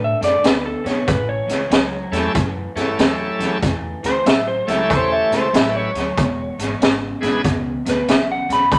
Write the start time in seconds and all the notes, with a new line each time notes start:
Already playing: A2 D3 A3
0.04 E5
0.21 F#2 D3 A3 D5, snare, closed hi-hat
0.43 D2 D3 B3 B4, snare, closed hi-hat
0.65 A4
0.84 B1 D3 B3 C#5, snare, closed hi-hat
1.07 A1 A2 E3 B4, kick, snare, closed hi-hat
1.29 C#5
1.47 C#2 A2 E3, snare, closed hi-hat
1.70 C#2 A2 F#3, snare, closed hi-hat
2.11 E2 A2 F#3 A3 C#4 E4 G4 A4, snare, closed hi-hat
2.33 F#2 A2 E3, kick, snare, closed hi-hat
2.76 G2 A2 E3 A3 C#4 E4 G4 A4, snare, closed hi-hat
2.98 E2 A2 F#3, snare, closed hi-hat
3.39 E2 A2 F#3, snare, closed hi-hat
3.61 E2 A2 E3, kick, snare, closed hi-hat
4.03 D2 A2 E3 C5, snare, closed hi-hat
4.25 A1 A2 F#3 E5, snare, closed hi-hat
4.48 C5
4.67 C#2 A2 F#3 A3 C#4 E4 G4 A4 E5, snare, closed hi-hat
4.90 E2 A2 E3 C5, kick, snare, closed hi-hat
5.12 E5
5.31 C#2 A2 E3 C5, snare, closed hi-hat
5.53 A1 A2 F#3 A3 C#4 E4 G4 B4 E5, snare, closed hi-hat
5.77 C#5
5.94 D2 A2 F#3, snare, closed hi-hat
6.17 E1 E2 B2, kick, snare, closed hi-hat
6.58 G#1 E2 B2, snare, closed hi-hat
6.80 G#1 E2 C#3, snare, closed hi-hat
7.21 B1 E2 C#3 G#3 B3 D4 E4 G#4, snare, closed hi-hat
7.44 C#2 E2 B2, kick, snare, closed hi-hat
7.86 D2 E2 B2 B4, snare, closed hi-hat
8.08 B1 E2 C#3 E5, snare, closed hi-hat
8.32 F#5
8.49 B1 E2 C#3 B5, snare, closed hi-hat
8.72 B1 E2 B2 B5, kick, snare, closed hi-hat